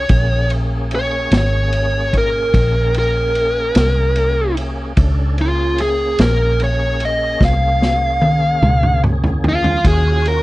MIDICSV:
0, 0, Header, 1, 5, 480
1, 0, Start_track
1, 0, Key_signature, -5, "minor"
1, 0, Tempo, 812458
1, 59, Time_signature, 12, 3, 24, 8
1, 6160, End_track
2, 0, Start_track
2, 0, Title_t, "Lead electric guitar"
2, 0, Program_c, 0, 29
2, 0, Note_on_c, 0, 73, 98
2, 296, Note_off_c, 0, 73, 0
2, 563, Note_on_c, 0, 73, 69
2, 784, Note_off_c, 0, 73, 0
2, 813, Note_on_c, 0, 73, 77
2, 1262, Note_off_c, 0, 73, 0
2, 1287, Note_on_c, 0, 70, 76
2, 1739, Note_off_c, 0, 70, 0
2, 1766, Note_on_c, 0, 70, 87
2, 2688, Note_off_c, 0, 70, 0
2, 3198, Note_on_c, 0, 65, 83
2, 3421, Note_off_c, 0, 65, 0
2, 3436, Note_on_c, 0, 68, 72
2, 3660, Note_off_c, 0, 68, 0
2, 3672, Note_on_c, 0, 70, 82
2, 3898, Note_off_c, 0, 70, 0
2, 3921, Note_on_c, 0, 73, 71
2, 4143, Note_off_c, 0, 73, 0
2, 4166, Note_on_c, 0, 75, 72
2, 4385, Note_off_c, 0, 75, 0
2, 4402, Note_on_c, 0, 77, 93
2, 5326, Note_off_c, 0, 77, 0
2, 5604, Note_on_c, 0, 65, 93
2, 5824, Note_off_c, 0, 65, 0
2, 5836, Note_on_c, 0, 68, 84
2, 6060, Note_off_c, 0, 68, 0
2, 6073, Note_on_c, 0, 70, 83
2, 6160, Note_off_c, 0, 70, 0
2, 6160, End_track
3, 0, Start_track
3, 0, Title_t, "Tonewheel organ"
3, 0, Program_c, 1, 16
3, 57, Note_on_c, 1, 58, 61
3, 58, Note_on_c, 1, 68, 61
3, 60, Note_on_c, 1, 61, 63
3, 2914, Note_off_c, 1, 58, 0
3, 2914, Note_off_c, 1, 68, 0
3, 2915, Note_off_c, 1, 61, 0
3, 2931, Note_on_c, 1, 61, 58
3, 2933, Note_on_c, 1, 62, 59
3, 2936, Note_on_c, 1, 69, 58
3, 3169, Note_off_c, 1, 61, 0
3, 3173, Note_on_c, 1, 68, 64
3, 3176, Note_off_c, 1, 62, 0
3, 3176, Note_on_c, 1, 61, 64
3, 3177, Note_off_c, 1, 69, 0
3, 3178, Note_on_c, 1, 58, 62
3, 5791, Note_off_c, 1, 68, 0
3, 5792, Note_off_c, 1, 61, 0
3, 5793, Note_off_c, 1, 58, 0
3, 5822, Note_on_c, 1, 61, 61
3, 5824, Note_on_c, 1, 65, 62
3, 5827, Note_on_c, 1, 66, 65
3, 6160, Note_off_c, 1, 61, 0
3, 6160, Note_off_c, 1, 65, 0
3, 6160, Note_off_c, 1, 66, 0
3, 6160, End_track
4, 0, Start_track
4, 0, Title_t, "Fingered electric bass"
4, 0, Program_c, 2, 33
4, 57, Note_on_c, 2, 34, 82
4, 757, Note_off_c, 2, 34, 0
4, 777, Note_on_c, 2, 32, 82
4, 1476, Note_off_c, 2, 32, 0
4, 1500, Note_on_c, 2, 34, 84
4, 2197, Note_off_c, 2, 34, 0
4, 2220, Note_on_c, 2, 36, 90
4, 2918, Note_off_c, 2, 36, 0
4, 2937, Note_on_c, 2, 37, 77
4, 3636, Note_off_c, 2, 37, 0
4, 3658, Note_on_c, 2, 34, 83
4, 4356, Note_off_c, 2, 34, 0
4, 4375, Note_on_c, 2, 36, 83
4, 5074, Note_off_c, 2, 36, 0
4, 5094, Note_on_c, 2, 37, 90
4, 5794, Note_off_c, 2, 37, 0
4, 5818, Note_on_c, 2, 39, 74
4, 6160, Note_off_c, 2, 39, 0
4, 6160, End_track
5, 0, Start_track
5, 0, Title_t, "Drums"
5, 54, Note_on_c, 9, 51, 75
5, 57, Note_on_c, 9, 36, 102
5, 113, Note_off_c, 9, 51, 0
5, 116, Note_off_c, 9, 36, 0
5, 296, Note_on_c, 9, 51, 53
5, 355, Note_off_c, 9, 51, 0
5, 537, Note_on_c, 9, 51, 58
5, 596, Note_off_c, 9, 51, 0
5, 777, Note_on_c, 9, 51, 71
5, 784, Note_on_c, 9, 38, 95
5, 836, Note_off_c, 9, 51, 0
5, 843, Note_off_c, 9, 38, 0
5, 1019, Note_on_c, 9, 51, 61
5, 1079, Note_off_c, 9, 51, 0
5, 1260, Note_on_c, 9, 36, 68
5, 1261, Note_on_c, 9, 51, 61
5, 1319, Note_off_c, 9, 36, 0
5, 1320, Note_off_c, 9, 51, 0
5, 1500, Note_on_c, 9, 36, 102
5, 1501, Note_on_c, 9, 51, 85
5, 1559, Note_off_c, 9, 36, 0
5, 1560, Note_off_c, 9, 51, 0
5, 1739, Note_on_c, 9, 51, 57
5, 1798, Note_off_c, 9, 51, 0
5, 1980, Note_on_c, 9, 51, 53
5, 2039, Note_off_c, 9, 51, 0
5, 2215, Note_on_c, 9, 51, 83
5, 2222, Note_on_c, 9, 38, 103
5, 2274, Note_off_c, 9, 51, 0
5, 2281, Note_off_c, 9, 38, 0
5, 2455, Note_on_c, 9, 51, 59
5, 2514, Note_off_c, 9, 51, 0
5, 2700, Note_on_c, 9, 51, 60
5, 2759, Note_off_c, 9, 51, 0
5, 2935, Note_on_c, 9, 51, 80
5, 2938, Note_on_c, 9, 36, 105
5, 2994, Note_off_c, 9, 51, 0
5, 2997, Note_off_c, 9, 36, 0
5, 3178, Note_on_c, 9, 51, 52
5, 3237, Note_off_c, 9, 51, 0
5, 3417, Note_on_c, 9, 51, 60
5, 3476, Note_off_c, 9, 51, 0
5, 3654, Note_on_c, 9, 51, 69
5, 3661, Note_on_c, 9, 38, 100
5, 3713, Note_off_c, 9, 51, 0
5, 3720, Note_off_c, 9, 38, 0
5, 3898, Note_on_c, 9, 51, 55
5, 3957, Note_off_c, 9, 51, 0
5, 4136, Note_on_c, 9, 51, 55
5, 4195, Note_off_c, 9, 51, 0
5, 4376, Note_on_c, 9, 36, 110
5, 4381, Note_on_c, 9, 38, 60
5, 4435, Note_off_c, 9, 36, 0
5, 4440, Note_off_c, 9, 38, 0
5, 4622, Note_on_c, 9, 38, 63
5, 4681, Note_off_c, 9, 38, 0
5, 4854, Note_on_c, 9, 48, 64
5, 4913, Note_off_c, 9, 48, 0
5, 5096, Note_on_c, 9, 47, 82
5, 5155, Note_off_c, 9, 47, 0
5, 5217, Note_on_c, 9, 45, 74
5, 5276, Note_off_c, 9, 45, 0
5, 5339, Note_on_c, 9, 45, 84
5, 5398, Note_off_c, 9, 45, 0
5, 5457, Note_on_c, 9, 43, 73
5, 5516, Note_off_c, 9, 43, 0
5, 5578, Note_on_c, 9, 43, 87
5, 5637, Note_off_c, 9, 43, 0
5, 5697, Note_on_c, 9, 43, 84
5, 5756, Note_off_c, 9, 43, 0
5, 5817, Note_on_c, 9, 36, 100
5, 5817, Note_on_c, 9, 51, 86
5, 5876, Note_off_c, 9, 36, 0
5, 5876, Note_off_c, 9, 51, 0
5, 6058, Note_on_c, 9, 51, 51
5, 6118, Note_off_c, 9, 51, 0
5, 6160, End_track
0, 0, End_of_file